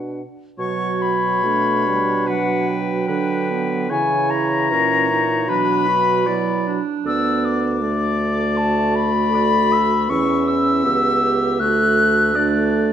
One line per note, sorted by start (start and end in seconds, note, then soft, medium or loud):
0.00 0.22 B2 soft
0.00 0.21 D4 soft
0.00 0.10 F#4 soft
0.00 0.22 F#5 soft
0.58 3.04 B2 medium
0.58 1.46 F#3 medium
0.58 1.47 F#4 medium
0.58 2.28 C#5 medium
0.58 1.03 C#6 loud
1.01 2.27 B5 medium
1.44 1.88 A3 medium
1.44 3.09 D4 medium
1.87 2.29 G3 medium
2.26 3.90 F#3 medium
2.26 3.07 B4 medium
2.26 2.70 F#5 medium
2.68 3.90 G5 loud
3.08 3.92 D3 medium
3.08 3.52 D4 medium
3.08 3.91 B4 medium
3.51 3.92 B3 medium
3.90 4.73 C#3 medium
3.90 5.45 E3 medium
3.90 4.74 E4 medium
3.90 4.70 C#5 medium
3.90 4.31 G#5 medium
4.30 5.50 A#5 loud
4.70 5.49 A#2 medium
4.70 5.10 C#4 medium
4.70 5.50 C#5 medium
5.11 5.51 D#4 medium
5.47 6.80 B2 medium
5.47 6.26 F#3 medium
5.47 5.90 D4 medium
5.47 6.28 B4 medium
5.47 6.80 B5 loud
5.88 6.29 F#4 medium
6.26 6.80 F#3 medium
6.26 6.69 E4 medium
6.26 6.80 D5 medium
6.67 8.33 D4 medium
7.05 10.06 D2 medium
7.05 7.84 B3 medium
7.05 7.78 D5 medium
7.05 7.46 E6 loud
7.45 8.58 D6 medium
7.82 10.11 A3 medium
7.82 9.31 D5 medium
8.57 10.13 F#4 medium
8.57 8.97 A5 medium
8.95 10.11 B5 loud
9.34 9.74 D5 medium
9.72 10.09 E5 medium
10.09 10.83 E2 medium
10.09 10.86 C#4 medium
10.09 10.86 E4 medium
10.09 10.83 E5 medium
10.09 10.49 C#6 loud
10.47 11.61 E6 loud
10.84 11.62 C#2 medium
10.84 11.61 B3 medium
10.84 11.22 G4 medium
10.84 12.37 E5 medium
11.23 11.62 G4 medium
11.60 12.93 D2 medium
11.60 12.34 A3 medium
11.60 12.35 F#4 medium
11.60 12.86 F#6 loud
12.35 12.93 A3 medium
12.35 12.93 D4 medium
12.35 12.93 D5 medium